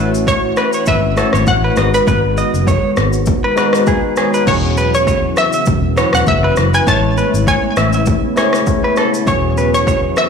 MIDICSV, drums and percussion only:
0, 0, Header, 1, 2, 480
1, 0, Start_track
1, 0, Tempo, 600000
1, 1658, Time_signature, 4, 2, 24, 8
1, 8234, End_track
2, 0, Start_track
2, 0, Title_t, "Drums"
2, 117, Note_on_c, 9, 82, 83
2, 197, Note_off_c, 9, 82, 0
2, 217, Note_on_c, 9, 36, 89
2, 222, Note_on_c, 9, 82, 77
2, 297, Note_off_c, 9, 36, 0
2, 302, Note_off_c, 9, 82, 0
2, 454, Note_on_c, 9, 82, 60
2, 458, Note_on_c, 9, 37, 93
2, 534, Note_off_c, 9, 82, 0
2, 538, Note_off_c, 9, 37, 0
2, 583, Note_on_c, 9, 82, 76
2, 663, Note_off_c, 9, 82, 0
2, 688, Note_on_c, 9, 82, 78
2, 699, Note_on_c, 9, 36, 117
2, 768, Note_off_c, 9, 82, 0
2, 779, Note_off_c, 9, 36, 0
2, 937, Note_on_c, 9, 82, 58
2, 940, Note_on_c, 9, 37, 98
2, 1017, Note_off_c, 9, 82, 0
2, 1020, Note_off_c, 9, 37, 0
2, 1062, Note_on_c, 9, 37, 94
2, 1078, Note_on_c, 9, 82, 79
2, 1142, Note_off_c, 9, 37, 0
2, 1158, Note_off_c, 9, 82, 0
2, 1174, Note_on_c, 9, 82, 68
2, 1177, Note_on_c, 9, 36, 94
2, 1254, Note_off_c, 9, 82, 0
2, 1257, Note_off_c, 9, 36, 0
2, 1411, Note_on_c, 9, 82, 55
2, 1419, Note_on_c, 9, 37, 90
2, 1491, Note_off_c, 9, 82, 0
2, 1499, Note_off_c, 9, 37, 0
2, 1554, Note_on_c, 9, 82, 72
2, 1634, Note_off_c, 9, 82, 0
2, 1658, Note_on_c, 9, 36, 103
2, 1659, Note_on_c, 9, 82, 73
2, 1738, Note_off_c, 9, 36, 0
2, 1739, Note_off_c, 9, 82, 0
2, 1900, Note_on_c, 9, 82, 57
2, 1980, Note_off_c, 9, 82, 0
2, 2036, Note_on_c, 9, 82, 78
2, 2116, Note_off_c, 9, 82, 0
2, 2137, Note_on_c, 9, 36, 88
2, 2142, Note_on_c, 9, 82, 78
2, 2217, Note_off_c, 9, 36, 0
2, 2222, Note_off_c, 9, 82, 0
2, 2373, Note_on_c, 9, 82, 60
2, 2377, Note_on_c, 9, 37, 95
2, 2453, Note_off_c, 9, 82, 0
2, 2457, Note_off_c, 9, 37, 0
2, 2503, Note_on_c, 9, 82, 73
2, 2583, Note_off_c, 9, 82, 0
2, 2608, Note_on_c, 9, 82, 80
2, 2619, Note_on_c, 9, 36, 115
2, 2688, Note_off_c, 9, 82, 0
2, 2699, Note_off_c, 9, 36, 0
2, 2857, Note_on_c, 9, 82, 57
2, 2860, Note_on_c, 9, 37, 97
2, 2937, Note_off_c, 9, 82, 0
2, 2940, Note_off_c, 9, 37, 0
2, 2983, Note_on_c, 9, 37, 96
2, 2998, Note_on_c, 9, 82, 76
2, 3063, Note_off_c, 9, 37, 0
2, 3078, Note_off_c, 9, 82, 0
2, 3094, Note_on_c, 9, 82, 66
2, 3097, Note_on_c, 9, 36, 90
2, 3174, Note_off_c, 9, 82, 0
2, 3177, Note_off_c, 9, 36, 0
2, 3331, Note_on_c, 9, 82, 54
2, 3339, Note_on_c, 9, 37, 89
2, 3411, Note_off_c, 9, 82, 0
2, 3419, Note_off_c, 9, 37, 0
2, 3472, Note_on_c, 9, 82, 74
2, 3552, Note_off_c, 9, 82, 0
2, 3577, Note_on_c, 9, 36, 106
2, 3577, Note_on_c, 9, 49, 91
2, 3578, Note_on_c, 9, 82, 71
2, 3657, Note_off_c, 9, 36, 0
2, 3657, Note_off_c, 9, 49, 0
2, 3658, Note_off_c, 9, 82, 0
2, 3819, Note_on_c, 9, 82, 56
2, 3899, Note_off_c, 9, 82, 0
2, 3955, Note_on_c, 9, 82, 82
2, 4035, Note_off_c, 9, 82, 0
2, 4057, Note_on_c, 9, 36, 88
2, 4061, Note_on_c, 9, 82, 76
2, 4137, Note_off_c, 9, 36, 0
2, 4141, Note_off_c, 9, 82, 0
2, 4293, Note_on_c, 9, 82, 59
2, 4297, Note_on_c, 9, 37, 92
2, 4373, Note_off_c, 9, 82, 0
2, 4377, Note_off_c, 9, 37, 0
2, 4423, Note_on_c, 9, 82, 76
2, 4503, Note_off_c, 9, 82, 0
2, 4527, Note_on_c, 9, 82, 80
2, 4538, Note_on_c, 9, 36, 119
2, 4607, Note_off_c, 9, 82, 0
2, 4618, Note_off_c, 9, 36, 0
2, 4777, Note_on_c, 9, 82, 61
2, 4780, Note_on_c, 9, 37, 101
2, 4857, Note_off_c, 9, 82, 0
2, 4860, Note_off_c, 9, 37, 0
2, 4902, Note_on_c, 9, 37, 98
2, 4918, Note_on_c, 9, 82, 80
2, 4982, Note_off_c, 9, 37, 0
2, 4998, Note_off_c, 9, 82, 0
2, 5013, Note_on_c, 9, 82, 66
2, 5017, Note_on_c, 9, 36, 92
2, 5093, Note_off_c, 9, 82, 0
2, 5097, Note_off_c, 9, 36, 0
2, 5251, Note_on_c, 9, 82, 57
2, 5259, Note_on_c, 9, 37, 90
2, 5331, Note_off_c, 9, 82, 0
2, 5339, Note_off_c, 9, 37, 0
2, 5392, Note_on_c, 9, 82, 73
2, 5472, Note_off_c, 9, 82, 0
2, 5497, Note_on_c, 9, 36, 105
2, 5499, Note_on_c, 9, 82, 75
2, 5577, Note_off_c, 9, 36, 0
2, 5579, Note_off_c, 9, 82, 0
2, 5740, Note_on_c, 9, 82, 57
2, 5820, Note_off_c, 9, 82, 0
2, 5876, Note_on_c, 9, 82, 85
2, 5956, Note_off_c, 9, 82, 0
2, 5977, Note_on_c, 9, 36, 91
2, 5982, Note_on_c, 9, 82, 78
2, 6057, Note_off_c, 9, 36, 0
2, 6062, Note_off_c, 9, 82, 0
2, 6213, Note_on_c, 9, 82, 63
2, 6217, Note_on_c, 9, 37, 97
2, 6293, Note_off_c, 9, 82, 0
2, 6297, Note_off_c, 9, 37, 0
2, 6342, Note_on_c, 9, 82, 74
2, 6422, Note_off_c, 9, 82, 0
2, 6448, Note_on_c, 9, 82, 78
2, 6459, Note_on_c, 9, 36, 119
2, 6528, Note_off_c, 9, 82, 0
2, 6539, Note_off_c, 9, 36, 0
2, 6696, Note_on_c, 9, 82, 58
2, 6700, Note_on_c, 9, 37, 107
2, 6776, Note_off_c, 9, 82, 0
2, 6780, Note_off_c, 9, 37, 0
2, 6822, Note_on_c, 9, 37, 96
2, 6837, Note_on_c, 9, 82, 79
2, 6902, Note_off_c, 9, 37, 0
2, 6917, Note_off_c, 9, 82, 0
2, 6934, Note_on_c, 9, 82, 67
2, 6937, Note_on_c, 9, 36, 96
2, 7014, Note_off_c, 9, 82, 0
2, 7017, Note_off_c, 9, 36, 0
2, 7171, Note_on_c, 9, 82, 56
2, 7179, Note_on_c, 9, 37, 91
2, 7251, Note_off_c, 9, 82, 0
2, 7259, Note_off_c, 9, 37, 0
2, 7313, Note_on_c, 9, 82, 74
2, 7393, Note_off_c, 9, 82, 0
2, 7418, Note_on_c, 9, 36, 108
2, 7419, Note_on_c, 9, 82, 75
2, 7498, Note_off_c, 9, 36, 0
2, 7499, Note_off_c, 9, 82, 0
2, 7659, Note_on_c, 9, 82, 55
2, 7739, Note_off_c, 9, 82, 0
2, 7796, Note_on_c, 9, 82, 82
2, 7876, Note_off_c, 9, 82, 0
2, 7897, Note_on_c, 9, 36, 90
2, 7902, Note_on_c, 9, 82, 80
2, 7977, Note_off_c, 9, 36, 0
2, 7982, Note_off_c, 9, 82, 0
2, 8132, Note_on_c, 9, 82, 62
2, 8136, Note_on_c, 9, 37, 93
2, 8212, Note_off_c, 9, 82, 0
2, 8216, Note_off_c, 9, 37, 0
2, 8234, End_track
0, 0, End_of_file